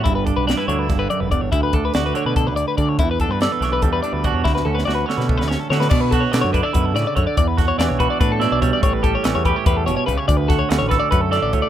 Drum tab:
CC |--------------|--------------|--------------|--------------|
HH |x-x-x-x-x-x-x-|x-x-x-x-x-x-x-|x-x-x-x-x-x-x-|--------------|
SD |----o---o-----|----o---------|----o-o-------|oo-oo-oo-oo-oo|
BD |o-o-----o---o-|o-o-----o---o-|o-o-----o---o-|o-------o-----|

CC |x-------------|--------------|--------------|--------------|
HH |--x-x-x-x-x-x-|x-x-x-x-x-x-x-|x-x-x-x-x-x-x-|x-x-x-x-x-x-x-|
SD |----o-----o---|--o-o-----o---|----o---------|--o-o-o---o---|
BD |o-o---o-o---o-|o-o---o-o---o-|o-o---o-o---o-|o-o---o-o---o-|